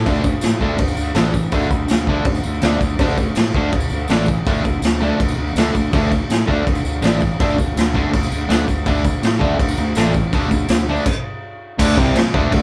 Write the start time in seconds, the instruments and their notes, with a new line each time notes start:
0.06 fingered electric bass D2, distorted electric guitar D3 A3 D4, kick, tambourine, crash
0.15 tambourine
0.24 kick, tambourine
0.41 fingered electric bass A2, snare, tambourine, crash
0.51 tambourine
0.61 fingered electric bass D2, distorted electric guitar D3 A3 D4, kick
0.78 fingered electric bass D2, kick, tambourine, crash
0.88 tambourine
0.97 fingered electric bass D2, tambourine
1.07 tambourine
1.15 fingered electric bass A1, distorted electric guitar D3 A3 D4, snare, tambourine, crash
1.34 kick, tambourine
1.44 tambourine
1.52 fingered electric bass D2, distorted electric guitar D3 A3 D4, kick, tambourine, crash
1.62 tambourine
1.70 fingered electric bass D2, kick, tambourine
1.88 fingered electric bass D2, snare, tambourine, crash
2.07 distorted electric guitar D3 A3 D4, kick
2.25 fingered electric bass D2, kick, tambourine, crash
2.35 tambourine
2.44 fingered electric bass D2, tambourine
2.54 tambourine
2.62 fingered electric bass D2, distorted electric guitar D3 A3 D4, snare, tambourine, crash
2.81 fingered electric bass D2, kick, tambourine
2.91 tambourine
2.99 fingered electric bass D2, distorted electric guitar D3 A3 D4, kick, tambourine, crash
3.08 tambourine
3.18 kick, tambourine
3.35 fingered electric bass A2, snare, tambourine, crash
3.45 tambourine
3.54 fingered electric bass D2, distorted electric guitar D3 A3 D4, kick
3.72 fingered electric bass D2, kick, tambourine, crash
3.80 tambourine
3.90 fingered electric bass D2, tambourine
4.00 tambourine
4.08 fingered electric bass A1, distorted electric guitar D3 A3 D4, snare, tambourine, crash
4.17 tambourine
4.26 kick, tambourine
4.36 tambourine
4.45 fingered electric bass D2, distorted electric guitar D3 A3 D4, kick, tambourine, crash
4.55 tambourine
4.64 fingered electric bass D2, kick, tambourine
4.73 tambourine
4.82 fingered electric bass D2, snare, tambourine, crash
4.92 tambourine
5.00 distorted electric guitar D3 A3 D4, tambourine
5.20 fingered electric bass D2, kick, tambourine, crash
5.28 tambourine
5.38 fingered electric bass D2
5.47 tambourine
5.55 fingered electric bass D2, distorted electric guitar D3 A3 D4, snare, tambourine, crash
5.66 tambourine
5.75 fingered electric bass D2, kick, tambourine
5.86 tambourine
5.93 fingered electric bass D2, distorted electric guitar D3 A3 D4, kick, tambourine, crash
6.04 tambourine
6.11 kick, tambourine
6.30 fingered electric bass A2, snare, tambourine, crash
6.38 tambourine
6.47 fingered electric bass D2, distorted electric guitar D3 A3 D4, kick
6.65 fingered electric bass D2, kick, tambourine, crash
6.75 tambourine
6.84 fingered electric bass D2, tambourine
6.93 tambourine
7.02 fingered electric bass A1, distorted electric guitar D3 A3 D4, snare, tambourine, crash
7.21 kick, tambourine
7.31 tambourine
7.40 fingered electric bass D2, distorted electric guitar D3 A3 D4, kick, tambourine, crash
7.50 tambourine
7.58 fingered electric bass D2, kick, tambourine
7.76 fingered electric bass D2, snare, tambourine, crash
7.87 tambourine
7.94 distorted electric guitar D3 A3 D4, kick
8.13 fingered electric bass D2, kick, tambourine, crash
8.23 tambourine
8.32 fingered electric bass D2, tambourine
8.41 tambourine
8.48 fingered electric bass D2, distorted electric guitar D3 A3 D4, snare, tambourine, crash
8.68 fingered electric bass D2, kick, tambourine
8.86 fingered electric bass D2, distorted electric guitar D3 A3 D4, kick, tambourine, crash
8.97 tambourine
9.04 kick, tambourine
9.23 fingered electric bass A2, snare, tambourine, crash
9.40 fingered electric bass D2, distorted electric guitar D3 A3 D4, kick
9.59 fingered electric bass D2, kick, tambourine, crash
9.69 tambourine
9.77 fingered electric bass D2, tambourine
9.87 tambourine
9.95 fingered electric bass A1, distorted electric guitar D3 A3 D4, snare, tambourine, crash
10.04 tambourine
10.14 kick, tambourine
10.23 tambourine
10.33 fingered electric bass D2, distorted electric guitar D3 A3 D4, kick, tambourine, crash
10.42 tambourine
10.51 fingered electric bass D2, kick, tambourine
10.60 tambourine
10.68 fingered electric bass D2, snare, tambourine, crash
10.79 tambourine
10.88 distorted electric guitar D3 A3 D4, tambourine
10.96 tambourine
11.06 kick, crash
11.79 fingered electric bass D2, distorted electric guitar D3 A3 D4, kick, crash
11.97 fingered electric bass C2, distorted electric guitar C3 G3 C4, kick
12.16 muted fingered electric bass stroke, muted distorted electric guitar stroke, snare, crash
12.34 fingered electric bass D2, distorted electric guitar D3 A3 D4, kick
12.52 fingered electric bass D2, distorted electric guitar D3 A3, kick, crash